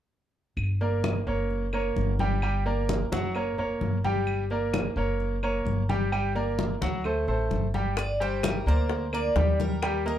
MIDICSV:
0, 0, Header, 1, 5, 480
1, 0, Start_track
1, 0, Key_signature, -2, "minor"
1, 0, Tempo, 462250
1, 597, Time_signature, 4, 2, 24, 8
1, 10576, End_track
2, 0, Start_track
2, 0, Title_t, "Cuban tres"
2, 0, Program_c, 0, 25
2, 8292, Note_on_c, 0, 74, 100
2, 8510, Note_off_c, 0, 74, 0
2, 8532, Note_on_c, 0, 72, 83
2, 8773, Note_off_c, 0, 72, 0
2, 8774, Note_on_c, 0, 70, 94
2, 9014, Note_off_c, 0, 70, 0
2, 9017, Note_on_c, 0, 72, 97
2, 9491, Note_off_c, 0, 72, 0
2, 9496, Note_on_c, 0, 74, 101
2, 9971, Note_off_c, 0, 74, 0
2, 9975, Note_on_c, 0, 70, 84
2, 10414, Note_off_c, 0, 70, 0
2, 10463, Note_on_c, 0, 70, 79
2, 10576, Note_off_c, 0, 70, 0
2, 10576, End_track
3, 0, Start_track
3, 0, Title_t, "Grand piano"
3, 0, Program_c, 1, 0
3, 840, Note_on_c, 1, 58, 61
3, 844, Note_on_c, 1, 70, 64
3, 845, Note_on_c, 1, 74, 62
3, 1233, Note_off_c, 1, 58, 0
3, 1235, Note_off_c, 1, 70, 0
3, 1236, Note_off_c, 1, 74, 0
3, 1317, Note_on_c, 1, 58, 61
3, 1320, Note_on_c, 1, 70, 55
3, 1324, Note_on_c, 1, 73, 62
3, 1711, Note_off_c, 1, 58, 0
3, 1713, Note_off_c, 1, 70, 0
3, 1716, Note_off_c, 1, 73, 0
3, 1799, Note_on_c, 1, 58, 64
3, 1803, Note_on_c, 1, 70, 62
3, 1806, Note_on_c, 1, 73, 64
3, 2193, Note_off_c, 1, 58, 0
3, 2195, Note_off_c, 1, 70, 0
3, 2197, Note_off_c, 1, 73, 0
3, 2284, Note_on_c, 1, 55, 80
3, 2284, Note_on_c, 1, 67, 74
3, 2288, Note_on_c, 1, 79, 76
3, 2479, Note_off_c, 1, 55, 0
3, 2479, Note_off_c, 1, 67, 0
3, 2481, Note_off_c, 1, 79, 0
3, 2521, Note_on_c, 1, 55, 72
3, 2524, Note_on_c, 1, 67, 73
3, 2527, Note_on_c, 1, 79, 71
3, 2717, Note_off_c, 1, 55, 0
3, 2719, Note_off_c, 1, 67, 0
3, 2721, Note_off_c, 1, 79, 0
3, 2759, Note_on_c, 1, 58, 72
3, 2761, Note_on_c, 1, 70, 63
3, 2766, Note_on_c, 1, 74, 66
3, 3153, Note_off_c, 1, 58, 0
3, 3154, Note_off_c, 1, 70, 0
3, 3157, Note_off_c, 1, 74, 0
3, 3241, Note_on_c, 1, 54, 78
3, 3242, Note_on_c, 1, 66, 65
3, 3247, Note_on_c, 1, 78, 67
3, 3437, Note_off_c, 1, 54, 0
3, 3438, Note_off_c, 1, 66, 0
3, 3441, Note_off_c, 1, 78, 0
3, 3483, Note_on_c, 1, 58, 59
3, 3485, Note_on_c, 1, 70, 63
3, 3488, Note_on_c, 1, 73, 67
3, 3679, Note_off_c, 1, 58, 0
3, 3680, Note_off_c, 1, 70, 0
3, 3681, Note_off_c, 1, 73, 0
3, 3720, Note_on_c, 1, 58, 60
3, 3723, Note_on_c, 1, 70, 61
3, 3726, Note_on_c, 1, 73, 65
3, 4114, Note_off_c, 1, 58, 0
3, 4116, Note_off_c, 1, 70, 0
3, 4117, Note_off_c, 1, 73, 0
3, 4200, Note_on_c, 1, 55, 81
3, 4204, Note_on_c, 1, 67, 72
3, 4206, Note_on_c, 1, 79, 78
3, 4594, Note_off_c, 1, 55, 0
3, 4596, Note_off_c, 1, 67, 0
3, 4597, Note_off_c, 1, 79, 0
3, 4680, Note_on_c, 1, 58, 71
3, 4686, Note_on_c, 1, 70, 70
3, 4688, Note_on_c, 1, 74, 64
3, 5074, Note_off_c, 1, 58, 0
3, 5078, Note_off_c, 1, 70, 0
3, 5079, Note_off_c, 1, 74, 0
3, 5157, Note_on_c, 1, 58, 67
3, 5159, Note_on_c, 1, 70, 61
3, 5163, Note_on_c, 1, 73, 61
3, 5553, Note_off_c, 1, 58, 0
3, 5553, Note_off_c, 1, 70, 0
3, 5556, Note_off_c, 1, 73, 0
3, 5639, Note_on_c, 1, 58, 61
3, 5639, Note_on_c, 1, 70, 58
3, 5644, Note_on_c, 1, 73, 68
3, 6033, Note_off_c, 1, 58, 0
3, 6034, Note_off_c, 1, 70, 0
3, 6036, Note_off_c, 1, 73, 0
3, 6118, Note_on_c, 1, 55, 77
3, 6123, Note_on_c, 1, 67, 73
3, 6124, Note_on_c, 1, 79, 69
3, 6316, Note_off_c, 1, 55, 0
3, 6319, Note_off_c, 1, 67, 0
3, 6319, Note_off_c, 1, 79, 0
3, 6355, Note_on_c, 1, 55, 70
3, 6359, Note_on_c, 1, 67, 77
3, 6364, Note_on_c, 1, 79, 73
3, 6554, Note_off_c, 1, 55, 0
3, 6557, Note_off_c, 1, 67, 0
3, 6560, Note_off_c, 1, 79, 0
3, 6597, Note_on_c, 1, 58, 68
3, 6601, Note_on_c, 1, 70, 61
3, 6602, Note_on_c, 1, 74, 67
3, 6992, Note_off_c, 1, 58, 0
3, 6995, Note_off_c, 1, 70, 0
3, 6995, Note_off_c, 1, 74, 0
3, 7077, Note_on_c, 1, 54, 69
3, 7079, Note_on_c, 1, 66, 70
3, 7084, Note_on_c, 1, 78, 65
3, 7275, Note_off_c, 1, 54, 0
3, 7277, Note_off_c, 1, 66, 0
3, 7279, Note_off_c, 1, 78, 0
3, 7320, Note_on_c, 1, 57, 67
3, 7322, Note_on_c, 1, 69, 63
3, 7325, Note_on_c, 1, 72, 61
3, 7517, Note_off_c, 1, 57, 0
3, 7518, Note_off_c, 1, 69, 0
3, 7520, Note_off_c, 1, 72, 0
3, 7558, Note_on_c, 1, 57, 68
3, 7559, Note_on_c, 1, 69, 57
3, 7562, Note_on_c, 1, 72, 63
3, 7953, Note_off_c, 1, 57, 0
3, 7954, Note_off_c, 1, 69, 0
3, 7955, Note_off_c, 1, 72, 0
3, 8040, Note_on_c, 1, 55, 73
3, 8043, Note_on_c, 1, 67, 76
3, 8045, Note_on_c, 1, 79, 67
3, 8237, Note_off_c, 1, 55, 0
3, 8239, Note_off_c, 1, 67, 0
3, 8240, Note_off_c, 1, 79, 0
3, 8518, Note_on_c, 1, 55, 79
3, 8524, Note_on_c, 1, 67, 73
3, 8525, Note_on_c, 1, 79, 79
3, 8912, Note_off_c, 1, 55, 0
3, 8916, Note_off_c, 1, 67, 0
3, 8917, Note_off_c, 1, 79, 0
3, 9003, Note_on_c, 1, 58, 70
3, 9005, Note_on_c, 1, 70, 65
3, 9006, Note_on_c, 1, 74, 66
3, 9395, Note_off_c, 1, 58, 0
3, 9396, Note_off_c, 1, 70, 0
3, 9397, Note_off_c, 1, 74, 0
3, 9481, Note_on_c, 1, 58, 66
3, 9485, Note_on_c, 1, 70, 66
3, 9487, Note_on_c, 1, 74, 64
3, 9677, Note_off_c, 1, 58, 0
3, 9680, Note_off_c, 1, 70, 0
3, 9681, Note_off_c, 1, 74, 0
3, 9720, Note_on_c, 1, 55, 72
3, 9722, Note_on_c, 1, 67, 70
3, 9725, Note_on_c, 1, 79, 69
3, 10113, Note_off_c, 1, 55, 0
3, 10115, Note_off_c, 1, 67, 0
3, 10116, Note_off_c, 1, 79, 0
3, 10203, Note_on_c, 1, 55, 80
3, 10207, Note_on_c, 1, 67, 74
3, 10210, Note_on_c, 1, 79, 79
3, 10398, Note_off_c, 1, 55, 0
3, 10401, Note_off_c, 1, 67, 0
3, 10403, Note_off_c, 1, 79, 0
3, 10442, Note_on_c, 1, 58, 65
3, 10447, Note_on_c, 1, 70, 70
3, 10450, Note_on_c, 1, 75, 67
3, 10576, Note_off_c, 1, 58, 0
3, 10576, Note_off_c, 1, 70, 0
3, 10576, Note_off_c, 1, 75, 0
3, 10576, End_track
4, 0, Start_track
4, 0, Title_t, "Upright bass"
4, 0, Program_c, 2, 32
4, 590, Note_on_c, 2, 31, 88
4, 1273, Note_off_c, 2, 31, 0
4, 1316, Note_on_c, 2, 30, 78
4, 1996, Note_off_c, 2, 30, 0
4, 2038, Note_on_c, 2, 31, 77
4, 3174, Note_off_c, 2, 31, 0
4, 3238, Note_on_c, 2, 30, 85
4, 3686, Note_off_c, 2, 30, 0
4, 3713, Note_on_c, 2, 29, 61
4, 3940, Note_off_c, 2, 29, 0
4, 3958, Note_on_c, 2, 31, 78
4, 5094, Note_off_c, 2, 31, 0
4, 5149, Note_on_c, 2, 30, 83
4, 5834, Note_off_c, 2, 30, 0
4, 5872, Note_on_c, 2, 31, 80
4, 7011, Note_off_c, 2, 31, 0
4, 7079, Note_on_c, 2, 38, 88
4, 7526, Note_off_c, 2, 38, 0
4, 7553, Note_on_c, 2, 33, 66
4, 7780, Note_off_c, 2, 33, 0
4, 7797, Note_on_c, 2, 31, 76
4, 8933, Note_off_c, 2, 31, 0
4, 8994, Note_on_c, 2, 38, 84
4, 9675, Note_off_c, 2, 38, 0
4, 9712, Note_on_c, 2, 39, 82
4, 10576, Note_off_c, 2, 39, 0
4, 10576, End_track
5, 0, Start_track
5, 0, Title_t, "Drums"
5, 595, Note_on_c, 9, 75, 61
5, 599, Note_on_c, 9, 63, 31
5, 699, Note_off_c, 9, 75, 0
5, 703, Note_off_c, 9, 63, 0
5, 841, Note_on_c, 9, 63, 32
5, 945, Note_off_c, 9, 63, 0
5, 1080, Note_on_c, 9, 63, 90
5, 1080, Note_on_c, 9, 75, 58
5, 1183, Note_off_c, 9, 75, 0
5, 1184, Note_off_c, 9, 63, 0
5, 1320, Note_on_c, 9, 63, 31
5, 1424, Note_off_c, 9, 63, 0
5, 1562, Note_on_c, 9, 63, 33
5, 1666, Note_off_c, 9, 63, 0
5, 1795, Note_on_c, 9, 75, 59
5, 1800, Note_on_c, 9, 63, 30
5, 1899, Note_off_c, 9, 75, 0
5, 1904, Note_off_c, 9, 63, 0
5, 2039, Note_on_c, 9, 63, 67
5, 2143, Note_off_c, 9, 63, 0
5, 2278, Note_on_c, 9, 63, 76
5, 2382, Note_off_c, 9, 63, 0
5, 2516, Note_on_c, 9, 75, 62
5, 2522, Note_on_c, 9, 63, 29
5, 2620, Note_off_c, 9, 75, 0
5, 2626, Note_off_c, 9, 63, 0
5, 2766, Note_on_c, 9, 63, 33
5, 2870, Note_off_c, 9, 63, 0
5, 3002, Note_on_c, 9, 63, 84
5, 3106, Note_off_c, 9, 63, 0
5, 3245, Note_on_c, 9, 63, 85
5, 3349, Note_off_c, 9, 63, 0
5, 3475, Note_on_c, 9, 75, 51
5, 3482, Note_on_c, 9, 63, 34
5, 3579, Note_off_c, 9, 75, 0
5, 3586, Note_off_c, 9, 63, 0
5, 3720, Note_on_c, 9, 63, 31
5, 3824, Note_off_c, 9, 63, 0
5, 3959, Note_on_c, 9, 63, 72
5, 4062, Note_off_c, 9, 63, 0
5, 4201, Note_on_c, 9, 63, 69
5, 4305, Note_off_c, 9, 63, 0
5, 4433, Note_on_c, 9, 75, 63
5, 4436, Note_on_c, 9, 63, 34
5, 4537, Note_off_c, 9, 75, 0
5, 4540, Note_off_c, 9, 63, 0
5, 4675, Note_on_c, 9, 63, 32
5, 4779, Note_off_c, 9, 63, 0
5, 4917, Note_on_c, 9, 75, 66
5, 4919, Note_on_c, 9, 63, 92
5, 5020, Note_off_c, 9, 75, 0
5, 5023, Note_off_c, 9, 63, 0
5, 5163, Note_on_c, 9, 63, 32
5, 5267, Note_off_c, 9, 63, 0
5, 5401, Note_on_c, 9, 63, 34
5, 5505, Note_off_c, 9, 63, 0
5, 5638, Note_on_c, 9, 75, 61
5, 5643, Note_on_c, 9, 63, 29
5, 5742, Note_off_c, 9, 75, 0
5, 5747, Note_off_c, 9, 63, 0
5, 5882, Note_on_c, 9, 63, 67
5, 5985, Note_off_c, 9, 63, 0
5, 6122, Note_on_c, 9, 63, 72
5, 6226, Note_off_c, 9, 63, 0
5, 6360, Note_on_c, 9, 63, 32
5, 6361, Note_on_c, 9, 75, 65
5, 6464, Note_off_c, 9, 63, 0
5, 6464, Note_off_c, 9, 75, 0
5, 6603, Note_on_c, 9, 63, 36
5, 6707, Note_off_c, 9, 63, 0
5, 6840, Note_on_c, 9, 63, 83
5, 6944, Note_off_c, 9, 63, 0
5, 7081, Note_on_c, 9, 63, 85
5, 7185, Note_off_c, 9, 63, 0
5, 7314, Note_on_c, 9, 75, 52
5, 7321, Note_on_c, 9, 63, 33
5, 7418, Note_off_c, 9, 75, 0
5, 7425, Note_off_c, 9, 63, 0
5, 7560, Note_on_c, 9, 63, 30
5, 7664, Note_off_c, 9, 63, 0
5, 7799, Note_on_c, 9, 63, 68
5, 7903, Note_off_c, 9, 63, 0
5, 8039, Note_on_c, 9, 63, 65
5, 8143, Note_off_c, 9, 63, 0
5, 8276, Note_on_c, 9, 60, 73
5, 8277, Note_on_c, 9, 75, 64
5, 8283, Note_on_c, 9, 63, 32
5, 8379, Note_off_c, 9, 60, 0
5, 8381, Note_off_c, 9, 75, 0
5, 8387, Note_off_c, 9, 63, 0
5, 8526, Note_on_c, 9, 63, 33
5, 8630, Note_off_c, 9, 63, 0
5, 8757, Note_on_c, 9, 75, 71
5, 8758, Note_on_c, 9, 60, 58
5, 8764, Note_on_c, 9, 63, 100
5, 8861, Note_off_c, 9, 60, 0
5, 8861, Note_off_c, 9, 75, 0
5, 8867, Note_off_c, 9, 63, 0
5, 9006, Note_on_c, 9, 63, 29
5, 9110, Note_off_c, 9, 63, 0
5, 9237, Note_on_c, 9, 60, 66
5, 9245, Note_on_c, 9, 63, 33
5, 9341, Note_off_c, 9, 60, 0
5, 9349, Note_off_c, 9, 63, 0
5, 9479, Note_on_c, 9, 75, 68
5, 9485, Note_on_c, 9, 63, 31
5, 9583, Note_off_c, 9, 75, 0
5, 9589, Note_off_c, 9, 63, 0
5, 9717, Note_on_c, 9, 60, 60
5, 9717, Note_on_c, 9, 61, 75
5, 9725, Note_on_c, 9, 63, 75
5, 9821, Note_off_c, 9, 60, 0
5, 9821, Note_off_c, 9, 61, 0
5, 9829, Note_off_c, 9, 63, 0
5, 9966, Note_on_c, 9, 63, 78
5, 10069, Note_off_c, 9, 63, 0
5, 10201, Note_on_c, 9, 75, 67
5, 10204, Note_on_c, 9, 60, 70
5, 10209, Note_on_c, 9, 63, 33
5, 10304, Note_off_c, 9, 75, 0
5, 10307, Note_off_c, 9, 60, 0
5, 10313, Note_off_c, 9, 63, 0
5, 10446, Note_on_c, 9, 60, 33
5, 10451, Note_on_c, 9, 63, 35
5, 10550, Note_off_c, 9, 60, 0
5, 10554, Note_off_c, 9, 63, 0
5, 10576, End_track
0, 0, End_of_file